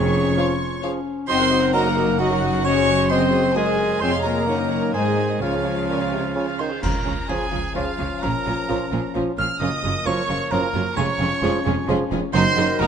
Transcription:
Already playing: F1 F2 C#4 G#4 C#5 C#6
0.37 F3 F4 G#4 C#5 F5
0.83 F3 C#4 G#4 C#5 F5
1.28 F#1 F#2 C4 D#4 F#4 C5 D#5 F#5 C6
1.39 A#4 D#5 F#5
1.51 F#4 D#5 F#5
1.62 A#4 D#5 F#5
1.73 F#3 A#3 F#4 A#4 D#5 F#5 A#5
1.84 A#4 D#5 F#5
1.94 D#5 F#5
1.98 F#4
2.06 A#4 D#5 F#5
2.17 F#3 D#4 F#4 D#5 F#5
2.29 A#4 D#5 F#5
2.40 F#4 D#5 F#5
2.52 A#4 D#5 F#5
2.64 C#4 F#4 C5 C#5 D#5 C#6
2.76 G#4 C5 D#5
2.87 F#4 C5 D#5
2.99 G#4 C5 D#5
3.09 G#3 C4 F#4 G#4 C5 D#5 C6
3.21 G#4 C5 D#5
3.32 F#4 C5 D#5
3.43 G#4 C5 D#5
3.54 G#3 F#4 G#4 A#4 C5 D#5 G#5
3.65 G#4 C5 D#5
3.77 F#4 C5 D#5
3.89 G#4 C5 D#5
4.00 F1 F2 G#3 C4 F4 G#4 C5 C#5 G#5 C6
4.12 G#4 F5
4.23 A#3 F4 A#4 C#5 G#5 A#5
4.35 G#4 F5
4.46 F#1 F#2 D#3 C#4 D#4 C#5 F#5
4.59 D#4 A#4 D#5
4.69 C#4 C#5 F#5
4.81 D#4 A#4 D#5
4.92 G#1 G#2 D#3 G#3 D#4 G#4 C5 G#5
5.05 G#4 D#5
5.18 D#4 C5 G#5
5.29 G#4 D#5
5.41 C#2 C#3 F3 F4 C#5 F5 G#5
5.53 G#4 F5
5.65 F4 C#5 G#5
5.76 G#4 F5
5.87 A#2 F4 C#5 G#5
5.98 G#4 F5
6.10 C3 F4 C#5 G#5
6.20 F5
6.25 G#4 F5
6.33 C#3 F4 C#5 G#5
6.46 G#4 F5
6.59 D#3 F4 C5 C#5 G#5 C6
6.70 G#4 F5
6.82 C#2 C#3 F3 C#4 F4 A#4 A#5, concert bass drum, crash
7.05 C#2 C#3 F3 C#4 F4
7.29 C#2 C#3 F3 C#4 F4 G#4 C#5 G#5
7.52 C#2 C#3 F3 C#4 F4
7.75 C#2 C#3 F3 C#4 F4 G#4 C#5 F5
7.98 C#2 C#3 F3 C#4 F4
8.23 A#1 A#2 F3 C#4 F4 A#4 A#5
8.46 A#1 A#2 F3 C#4 F4 A#4
8.69 A#1 A#2 F3 C#4 F4 A#4 C#5
8.92 A#1 A#2 F3 C#4 F4 A#4
9.15 A#1 A#2 F3 C#4 F4 A#4 C#5
9.38 A#1 A#2 F3 C#4 F4 A#4 F5 F6
9.60 F#1 F#2 F3 F#3 A#3 C#4 F4 A#4 D#5 D#6
9.84 F#1 F#2 F#3 C#4 F4 A#4
10.06 F#1 F#2 F3 F#3 C#4 F4 A#4 C#5 C#6
10.28 F#1 F#2 F#3 C#4 F4 A#4
10.51 F#1 F#2 F3 F#3 C#4 F4 A#4 C#5 A#5
10.74 F#1 F#2 F#3 C#4 F4 A#4
10.96 F1 F2 G#3 C#4 F4 G#4 C#5 C#6
11.19 F1 F2 G#3 C#4 F4 G#4
11.42 F1 F2 F3 G#3 C#4 F4 G#4 C#5
11.65 F1 F2 G#3 C#4 F4 G#4
11.87 F1 F2 F3 G#3 C#4 F4 G#4 C#5
12.11 F1 F2 G#3 C#4 F4 G#4
12.33 F#1 F#2 D#3 F#3 A#3 D#4 F#4 A#4 C5 D#5 C6
12.56 F#1 F#2 A#3 D#4 F#4
12.79 F#1 F#2 A#3 D#4 F#4 A#4 A#5

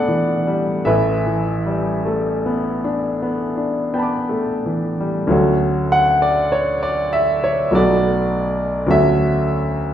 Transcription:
Already playing: A1 A2 A3 B3 D4 D5 E5 F#5 A5
0.08 E3
0.47 G3
0.85 A1 A2 B4 E5
1.26 E3
1.66 G3
2.06 A3
2.46 B3
2.84 D4
3.22 B3
3.57 D4
3.94 B3 G5 A5
3.99 B5 D6
4.29 A3
4.66 E3
5.00 G3
5.27 D2 F#3 A3 C#4
5.32 F#4
5.92 F#5
6.22 D5
6.52 C#5
6.83 D5
7.13 E5
7.44 C#5
7.71 B1 F#3 A3 B3 F#4 D5
8.86 D2 F#3 A3 C#4
8.91 F#4 E5

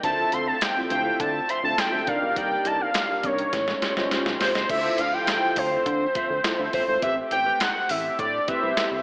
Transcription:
0.03 D2 D3 F3 A3 C4 E4 F4 A4 C5 E5 A5, kick, closed hi-hat
0.32 D2 C6, muted clean electric guitar stroke, closed hi-hat
0.47 F4 C5 F5 A5
0.61 G5, muted clean electric guitar stroke, snare, clap, closed hi-hat
0.76 C4 E4 F4 A4, muted clean electric guitar stroke
0.90 D2 F4 C5 F5 G5, closed hi-hat
1.05 F4 C5 F5
1.20 D3 A5, kick, closed hi-hat
1.34 muted clean electric guitar stroke
1.48 F4 C5 E5 C6, closed hi-hat
1.63 D2 C4 E4 F4 A4 A5, muted clean electric guitar stroke
1.78 G5, snare, clap, closed hi-hat
1.92 D2 F4 C5 E5
2.06 C2 C3 D#3 G3 A#3 D4 D#4 G4 A#4 D5 F5, kick, closed hi-hat
2.21 B1, muted clean electric guitar stroke
2.36 C2 D#4 A#4 D5 G5, kick, closed hi-hat
2.50 muted clean electric guitar stroke
2.65 C2 D#4 A#4 D#5 A5, closed hi-hat
2.80 D#4 A#4 D5 F5
2.94 snare, clap, closed hi-hat
3.09 D4 D#4 G4 A#4, muted clean electric guitar stroke
3.23 C2 C#5, kick, closed hi-hat
3.38 muted clean electric guitar stroke, closed hi-hat
3.53 A1 A3 C#4, kick, snare, closed hi-hat
3.67 muted clean electric guitar stroke, snare
3.82 F4 G4 C#5, snare, closed hi-hat
3.96 G1 C#4 F4 G4 C5 D#5, snare
4.11 muted clean electric guitar stroke, snare, closed hi-hat
4.26 B1, muted clean electric guitar stroke, snare
4.40 C2 F4 G4 C5 C#5, snare, open hi-hat
4.55 C#2 F4 G4 C5 D#5, snare, closed hi-hat
4.69 D2 D3 F3 A3 C4 E4 F4 A4 C5 E5, kick, closed hi-hat, crash
4.98 D2 F5, muted clean electric guitar stroke, closed hi-hat
5.13 E4 F4 A4 C5 F5 G5
5.27 snare, clap, closed hi-hat
5.43 muted clean electric guitar stroke
5.56 D2 F4 C5 F5, kick, open hi-hat
5.71 F4 C5 F5
5.86 D3, kick, closed hi-hat
6.01 muted clean electric guitar stroke
6.15 F4 C5 E5, kick, closed hi-hat
6.30 D2, muted clean electric guitar stroke
6.44 E4 F4 A4 C5, muted clean electric guitar stroke, snare, clap, closed hi-hat
6.58 D2 F4 C5 E5
6.73 G1 E4 F4 A4 C5 E5, kick, open hi-hat
6.88 G#1 E4 F4 A4 C5, muted clean electric guitar stroke
7.02 A1 C4 G4 B4 E5, kick, closed hi-hat
7.16 muted clean electric guitar stroke
7.31 A1 C4 G4 C5 G5, closed hi-hat
7.45 C4 G4 B4
7.60 F#5, snare, clap, closed hi-hat
7.75 muted clean electric guitar stroke
7.89 A1 E5, open hi-hat
8.04 muted clean electric guitar stroke
8.19 A2 D5, muted clean electric guitar stroke, kick, closed hi-hat
8.33 muted clean electric guitar stroke
8.48 C4 E4 G4 B4 C5 E5, kick, closed hi-hat
8.62 C2 C4 G4 C5
8.77 muted clean electric guitar stroke, snare, clap, closed hi-hat
8.92 C2, muted clean electric guitar stroke

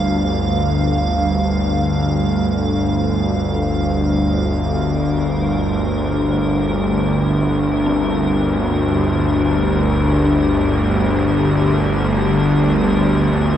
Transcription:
Already playing: G1 D2 G3 D4 F5 A5
4.08 G4
4.83 A#4
7.86 C4
10.25 D4

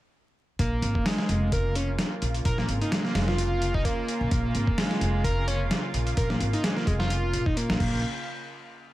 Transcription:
0.59 A#1 C#3 A#3 F4, kick, closed hi-hat
0.82 G#1, closed hi-hat
0.95 kick
1.06 G#3, snare, open hi-hat
1.18 snare
1.29 F1, closed hi-hat
1.52 A#4, kick, closed hi-hat
1.75 C#4, closed hi-hat
1.99 snare, closed hi-hat
2.22 A#1, closed hi-hat
2.34 closed hi-hat
2.45 A#1 A#4, kick, closed hi-hat
2.58 A#3, snare
2.68 G#1, closed hi-hat
2.81 D#4, closed hi-hat
2.92 G#3, snare, closed hi-hat
3.04 A#3, snare
3.15 F1 G#3, snare, open hi-hat
3.28 F4, snare
3.38 closed hi-hat
3.62 closed hi-hat
3.74 D#4, kick
3.85 A#3, kick, closed hi-hat
4.08 closed hi-hat
4.21 A#1
4.31 A#1 A#3, kick, closed hi-hat
4.55 G#1, closed hi-hat
4.67 kick
4.78 G#3, snare, open hi-hat
4.91 snare
5.01 F1, closed hi-hat
5.24 A#4, kick, closed hi-hat
5.48 C#4, closed hi-hat
5.71 snare, closed hi-hat
5.94 A#1, closed hi-hat
6.07 closed hi-hat
6.17 A#1 A#4, kick, closed hi-hat
6.30 A#3, snare
6.40 G#1, closed hi-hat
6.53 D#4, closed hi-hat
6.64 G#3, snare, closed hi-hat
6.76 A#3, snare
6.87 F1 G#3, kick, closed hi-hat
6.99 F4, snare
7.10 closed hi-hat
7.33 A#2, closed hi-hat
7.46 D#4, kick
7.57 A#3, closed hi-hat
7.69 A#1, snare
7.80 A#1 C#3 A#3 F4, kick, crash

